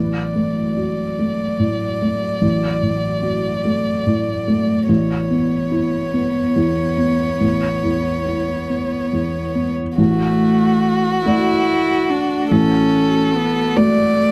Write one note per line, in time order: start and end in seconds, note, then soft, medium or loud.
0.00 2.38 A1 soft
0.00 4.85 F#3 soft
0.00 4.85 A3 soft
0.00 4.85 F#4 soft
0.00 4.85 D5 soft
0.35 1.02 A3 soft
0.77 1.43 F#4 soft
1.19 1.84 A3 soft
1.59 2.25 A2 soft
2.02 2.67 A3 soft
2.42 4.85 A1 soft
2.82 3.48 A2 soft
3.22 3.89 F#4 soft
3.65 4.31 A3 soft
4.06 4.72 A2 soft
4.47 4.89 A3 soft
4.88 7.38 A1 soft
4.88 9.74 B3 medium
4.88 9.98 B3 medium
4.88 9.98 E4 medium
4.88 9.73 C#5 medium
4.88 9.99 C#5 medium
5.30 5.97 B3 soft
5.72 6.39 E4 soft
6.13 6.82 B3 soft
6.56 7.25 E2 soft
6.97 7.67 B3 soft
7.41 9.93 A1 soft
7.84 8.53 E2 soft
8.26 8.95 E4 soft
8.69 9.38 B3 soft
9.13 9.81 E2 soft
9.55 9.98 B3 soft
9.97 11.22 A1 medium
9.97 14.32 A3 medium
9.97 11.22 A3 medium
9.97 12.48 F#4 medium
9.97 14.32 F#4 medium
9.97 14.32 F#5 medium
11.26 12.48 A3 soft
11.26 12.11 E4 medium
11.26 12.48 F#4 soft
11.26 12.48 D5 soft
12.10 12.53 D4 medium
12.51 13.73 A1 medium
12.51 13.38 C#4 medium
12.51 13.78 A4 medium
13.36 13.78 B3 medium
13.76 14.32 A3 soft
13.76 14.32 A3 medium
13.76 14.32 F#4 soft
13.76 14.32 D5 soft
13.76 14.32 D5 medium